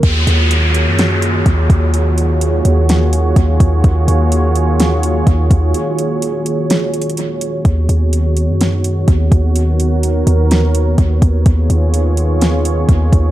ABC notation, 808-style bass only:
X:1
M:4/4
L:1/16
Q:1/4=126
K:Ebm
V:1 name="808-style bass" clef=bass
E,,2 E,,4- E,, G,,4- G,, E,,2 E,,2- | E,,6 E,,6 E,,2 E,,2 | E,,2 E,,8- E,,2 E,,2 E,,2 | z16 |
^D,,2 D,,4- D,, ^F,,4- F,, D,,2 D,,2- | ^D,,6 D,,6 D,,2 D,,2 | E,,2 E,,8- E,,2 E,,2 E,,2 |]